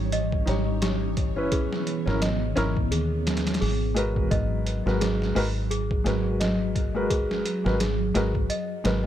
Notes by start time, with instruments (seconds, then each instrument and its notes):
Already playing: fingered electric bass G#1, string machine E3 G3 C#5, celesta G4
0.12 celesta D#5, closed hi-hat
0.32 kick
0.46 fingered electric bass G#1, felt piano D#4 G4 C#5, snare, closed hi-hat
0.82 celesta G4, snare, closed hi-hat
1.17 kick, closed hi-hat
1.36 felt piano C#4 E4 B4
1.52 string machine B3, celesta G#4, kick, closed hi-hat
1.73 snare
1.87 closed hi-hat
2.06 fingered electric bass G#1, felt piano C#4 E4 A#4, snare
2.22 celesta D#5, snare, closed hi-hat
2.56 fingered electric bass G#1, felt piano C#4 E4 A#4, snare, closed hi-hat
2.77 kick
2.91 fingered electric bass D#2, celesta G#4, closed hi-hat
3.27 snare, closed hi-hat
3.37 snare, closed hi-hat
3.47 snare, closed hi-hat
3.54 snare, closed hi-hat
3.61 fingered electric bass G#1, celesta G#4, open hi-hat
3.94 felt piano G#3 F#4 A#4 B4, closed hi-hat
4.16 kick
4.31 fingered electric bass G#1, string machine F#3, celesta D#5, kick, closed hi-hat
4.67 closed hi-hat
4.86 fingered electric bass G#1, felt piano G#3 F#4 A#4 B4, snare
5.01 celesta G#4, snare, closed hi-hat
5.22 snare
5.35 fingered electric bass G#1, felt piano G#3 F#4 A#4 B4, open hi-hat
5.71 celesta G#4, closed hi-hat
5.91 kick
6.04 fingered electric bass G#1, felt piano G#3 F#4 A#4 B4, snare, closed hi-hat
6.40 celesta D#5, snare, closed hi-hat
6.76 kick, closed hi-hat
6.95 felt piano G#3 F#4 A#4 B4
7.10 celesta G#4, kick, closed hi-hat
7.31 snare
7.46 closed hi-hat
7.64 fingered electric bass G#1, felt piano G#3 F#4 A#4 B4, snare
7.80 celesta G#4, snare, closed hi-hat
8.14 fingered electric bass G#1, felt piano G#3 F#4 A#4 B4, snare, closed hi-hat
8.35 kick
8.50 celesta D#5, closed hi-hat
8.84 fingered electric bass G#1, felt piano G#3 F#4 A#4 B4, snare, closed hi-hat